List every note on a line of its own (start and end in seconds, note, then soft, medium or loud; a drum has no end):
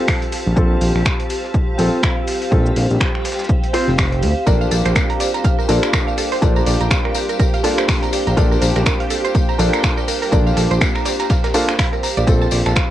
0.00 0.54 C4 medium
0.00 0.54 F4 medium
0.00 12.26 G4 medium
0.00 0.55 A4 medium
0.00 12.27 C5 medium
0.00 12.27 F5 medium
0.00 1.24 A5 medium
0.08 finger snap loud
0.08 kick medium
0.08 snare loud
0.08 open hi-hat medium
0.08 shaker medium
0.22 closed hi-hat soft
0.32 open hi-hat medium
0.32 shaker medium
0.47 0.54 A#1 medium
0.56 0.76 A#1 medium
0.56 1.76 C4 medium
0.56 1.76 F4 medium
0.56 1.77 A4 medium
0.56 kick loud
0.56 shaker medium
0.81 0.92 A#1 medium
0.81 open hi-hat loud
0.81 shaker medium
0.95 1.03 A#1 loud
0.95 finger snap soft
1.05 6.21 G5 medium
1.05 finger snap loud
1.05 kick medium
1.05 snare loud
1.05 shaker medium
1.20 closed hi-hat soft
1.30 open hi-hat loud
1.30 shaker medium
1.44 snare soft
1.54 kick loud
1.54 shaker medium
1.78 1.89 A#1 medium
1.78 2.49 C4 medium
1.78 2.49 F4 medium
1.78 2.50 A4 medium
1.78 snare soft
1.78 open hi-hat medium
1.78 shaker medium
2.03 finger snap loud
2.03 kick loud
2.03 snare loud
2.03 shaker medium
2.27 open hi-hat medium
2.27 shaker medium
2.42 open hi-hat medium
2.51 2.71 A#1 medium
2.51 3.71 C4 medium
2.51 3.71 F4 medium
2.51 3.72 A4 medium
2.51 kick loud
2.51 shaker medium
2.66 shaker medium
2.76 2.87 A#1 medium
2.76 open hi-hat medium
2.90 2.98 A#1 loud
2.90 shaker medium
3.01 finger snap loud
3.01 kick medium
3.01 snare loud
3.01 shaker medium
3.15 finger snap soft
3.25 snare medium
3.25 open hi-hat loud
3.25 shaker medium
3.32 snare medium
3.32 shaker medium
3.39 snare medium
3.39 shaker medium
3.44 snare medium
3.44 shaker medium
3.49 kick loud
3.49 shaker medium
3.64 closed hi-hat soft
3.73 3.89 C4 medium
3.73 3.89 F4 medium
3.73 3.89 C5 loud
3.73 snare loud
3.73 open hi-hat loud
3.73 shaker medium
3.88 4.24 F1 medium
3.88 snare soft
3.98 finger snap loud
3.98 kick medium
3.98 snare loud
3.98 open hi-hat medium
3.98 shaker medium
4.12 closed hi-hat soft
4.23 4.33 D2 loud
4.23 open hi-hat medium
4.23 shaker medium
4.46 4.66 A#1 medium
4.46 5.66 A#3 medium
4.46 5.66 D4 medium
4.46 5.67 F4 medium
4.46 12.29 G4 medium
4.46 5.67 A4 medium
4.46 4.54 A#4 loud
4.46 5.67 D5 medium
4.46 12.29 G5 medium
4.46 kick loud
4.46 closed hi-hat medium
4.46 tambourine soft
4.46 shaker medium
4.61 4.69 F5 medium
4.61 tambourine soft
4.71 4.82 A#1 medium
4.71 4.79 A4 medium
4.71 open hi-hat loud
4.71 tambourine medium
4.71 shaker medium
4.85 4.93 A#1 loud
4.85 4.89 C5 loud
4.85 finger snap soft
4.85 closed hi-hat medium
4.85 tambourine soft
4.96 5.03 A#3 medium
4.96 finger snap loud
4.96 kick loud
4.96 snare loud
4.96 closed hi-hat medium
4.96 tambourine soft
4.96 shaker medium
5.10 5.15 A#5 loud
5.10 closed hi-hat soft
5.20 5.27 D5 medium
5.20 snare soft
5.20 open hi-hat loud
5.20 tambourine medium
5.20 shaker medium
5.34 5.37 A#5 medium
5.34 snare soft
5.34 closed hi-hat soft
5.34 tambourine soft
5.44 5.55 F5 medium
5.44 kick loud
5.44 closed hi-hat medium
5.44 tambourine soft
5.44 shaker medium
5.59 5.67 A#4 medium
5.59 tambourine soft
5.68 5.79 A#1 medium
5.68 6.39 A#3 medium
5.68 6.39 D4 medium
5.68 6.40 F4 medium
5.68 6.40 A4 medium
5.68 5.76 A#4 medium
5.68 6.40 D5 medium
5.68 snare soft
5.68 open hi-hat loud
5.68 tambourine medium
5.68 shaker medium
5.83 5.86 A#4 medium
5.83 finger snap medium
5.83 closed hi-hat soft
5.83 tambourine soft
5.93 6.01 A#4 loud
5.93 finger snap loud
5.93 kick loud
5.93 snare loud
5.93 tambourine soft
5.93 shaker medium
6.07 6.15 F5 medium
6.07 tambourine soft
6.18 6.25 A4 medium
6.18 open hi-hat medium
6.18 tambourine medium
6.18 shaker medium
6.32 6.35 C5 loud
6.32 snare medium
6.32 open hi-hat medium
6.32 tambourine soft
6.41 6.61 A#1 loud
6.41 7.61 A#3 medium
6.41 6.49 A#3 medium
6.41 7.61 D4 medium
6.41 7.62 F4 medium
6.41 7.62 A4 medium
6.41 7.62 D5 medium
6.41 kick loud
6.41 closed hi-hat medium
6.41 tambourine soft
6.41 shaker medium
6.56 6.62 A#5 loud
6.56 tambourine soft
6.66 6.77 A#1 medium
6.66 6.74 D5 medium
6.66 open hi-hat loud
6.66 tambourine loud
6.66 shaker medium
6.81 6.88 A#1 loud
6.81 6.84 A#5 medium
6.81 closed hi-hat soft
6.81 tambourine soft
6.91 7.02 F5 medium
6.91 finger snap loud
6.91 kick loud
6.91 snare loud
6.91 closed hi-hat medium
6.91 tambourine medium
6.91 shaker medium
7.05 7.13 A#4 medium
7.05 finger snap soft
7.15 7.22 A#4 medium
7.15 open hi-hat loud
7.15 tambourine medium
7.15 shaker medium
7.29 7.33 A#4 medium
7.29 closed hi-hat soft
7.29 tambourine soft
7.40 7.47 A#4 loud
7.40 kick loud
7.40 closed hi-hat medium
7.40 tambourine medium
7.40 shaker medium
7.54 7.62 F5 medium
7.54 closed hi-hat soft
7.54 tambourine soft
7.63 8.34 A#3 medium
7.63 8.35 D4 medium
7.63 8.35 F4 medium
7.63 7.71 A4 medium
7.63 8.35 A4 medium
7.63 8.35 D5 medium
7.63 open hi-hat loud
7.63 tambourine loud
7.63 shaker medium
7.78 7.81 C5 loud
7.78 finger snap medium
7.78 snare soft
7.78 closed hi-hat soft
7.78 tambourine soft
7.88 7.96 A#3 medium
7.88 finger snap loud
7.88 kick loud
7.88 snare loud
7.88 open hi-hat medium
7.88 tambourine medium
7.88 shaker medium
8.03 8.08 A#5 loud
8.03 closed hi-hat soft
8.03 tambourine soft
8.13 8.20 D5 medium
8.13 open hi-hat loud
8.13 tambourine medium
8.13 shaker medium
8.27 8.35 A#1 medium
8.27 8.30 A#5 medium
8.27 closed hi-hat medium
8.27 tambourine soft
8.36 8.56 A#1 loud
8.36 9.56 A#3 medium
8.36 9.57 D4 medium
8.36 9.57 F4 medium
8.36 9.57 A4 medium
8.36 9.57 D5 medium
8.36 8.48 F5 medium
8.36 kick loud
8.36 closed hi-hat medium
8.36 tambourine medium
8.36 shaker medium
8.51 8.59 A#4 medium
8.51 tambourine soft
8.62 8.72 A#1 medium
8.62 8.69 A#4 medium
8.62 open hi-hat loud
8.62 tambourine medium
8.62 shaker medium
8.76 8.83 A#1 loud
8.76 8.79 A#4 medium
8.76 finger snap soft
8.76 closed hi-hat soft
8.76 tambourine soft
8.86 8.93 A#4 loud
8.86 finger snap loud
8.86 kick loud
8.86 snare loud
8.86 closed hi-hat medium
8.86 tambourine soft
8.86 shaker medium
9.00 9.08 F5 medium
9.00 closed hi-hat soft
9.10 9.18 A4 medium
9.10 open hi-hat loud
9.10 tambourine loud
9.10 shaker medium
9.24 9.28 C5 loud
9.24 snare soft
9.24 closed hi-hat soft
9.24 tambourine soft
9.35 9.42 A#3 medium
9.35 kick loud
9.35 closed hi-hat medium
9.35 tambourine medium
9.35 shaker medium
9.49 9.54 A#5 loud
9.49 tambourine soft
9.58 9.70 A#1 medium
9.58 10.30 A#3 medium
9.58 10.30 D4 medium
9.58 10.30 F4 medium
9.58 10.30 A4 medium
9.58 9.66 D5 medium
9.58 10.30 D5 medium
9.58 snare soft
9.58 open hi-hat loud
9.58 tambourine medium
9.58 shaker medium
9.73 9.76 A#5 medium
9.73 finger snap medium
9.73 closed hi-hat soft
9.73 tambourine soft
9.84 9.94 F5 medium
9.84 finger snap loud
9.84 kick loud
9.84 snare loud
9.84 tambourine medium
9.84 shaker medium
9.98 10.06 A#4 medium
9.98 tambourine soft
10.08 10.15 A#4 medium
10.08 open hi-hat loud
10.08 tambourine loud
10.08 shaker medium
10.22 10.25 A#4 medium
10.22 snare medium
10.22 open hi-hat medium
10.22 tambourine soft
10.32 10.52 A#1 medium
10.32 11.51 A#3 medium
10.32 11.52 D4 medium
10.32 11.52 F4 medium
10.32 11.52 A4 medium
10.32 10.40 A#4 loud
10.32 11.52 D5 medium
10.32 kick loud
10.32 closed hi-hat medium
10.32 tambourine medium
10.32 shaker medium
10.47 10.54 F5 medium
10.47 tambourine soft
10.57 10.67 A#1 medium
10.57 10.64 A4 medium
10.57 open hi-hat loud
10.57 tambourine medium
10.57 shaker medium
10.71 10.79 A#1 loud
10.71 10.74 C5 loud
10.71 closed hi-hat soft
10.71 tambourine soft
10.81 10.88 A#3 medium
10.81 finger snap loud
10.81 kick loud
10.81 snare loud
10.81 closed hi-hat medium
10.81 tambourine soft
10.81 shaker medium
10.95 11.01 A#5 loud
10.95 finger snap soft
10.95 tambourine soft
11.05 11.13 D5 medium
11.05 snare loud
11.05 open hi-hat loud
11.05 tambourine medium
11.05 shaker medium
11.20 11.23 A#5 medium
11.20 snare medium
11.20 closed hi-hat soft
11.20 tambourine soft
11.20 shaker medium
11.30 11.41 F5 medium
11.30 kick loud
11.30 snare loud
11.30 closed hi-hat medium
11.30 tambourine medium
11.30 shaker medium
11.44 11.52 A#4 medium
11.44 snare loud
11.44 tambourine soft
11.44 shaker medium
11.54 11.69 A#3 medium
11.54 11.69 D4 medium
11.54 11.69 F4 medium
11.54 11.69 A4 medium
11.54 11.65 D5 medium
11.54 11.70 F5 loud
11.54 open hi-hat loud
11.54 tambourine medium
11.54 shaker medium
11.68 11.72 A#4 medium
11.68 finger snap medium
11.68 snare soft
11.68 closed hi-hat soft
11.68 tambourine soft
11.79 11.86 F5 loud
11.79 finger snap loud
11.79 kick loud
11.79 snare loud
11.79 open hi-hat medium
11.79 tambourine medium
11.79 shaker medium
11.93 11.98 A#4 medium
11.93 closed hi-hat soft
11.93 tambourine soft
12.03 12.10 A#5 medium
12.03 open hi-hat loud
12.03 tambourine loud
12.03 shaker medium
12.17 12.25 A#1 medium
12.17 12.20 D5 medium
12.17 closed hi-hat soft
12.17 tambourine soft
12.27 12.47 A#1 loud
12.27 12.35 A3 medium
12.27 12.90 C4 medium
12.27 12.90 F4 medium
12.27 12.90 G4 medium
12.27 12.90 A4 medium
12.27 12.90 A5 medium
12.27 kick loud
12.27 closed hi-hat medium
12.27 tambourine soft
12.27 shaker medium
12.42 12.47 A5 loud
12.42 tambourine soft
12.49 12.62 A#1 medium
12.49 12.90 C5 medium
12.49 12.59 D5 medium
12.49 open hi-hat loud
12.49 tambourine medium
12.49 shaker medium
12.66 12.74 A#1 loud
12.66 12.69 A5 medium
12.66 finger snap soft
12.66 closed hi-hat soft
12.66 tambourine soft
12.76 12.87 F5 medium
12.76 finger snap loud
12.76 kick loud
12.76 snare loud
12.76 closed hi-hat medium
12.76 tambourine soft
12.76 shaker medium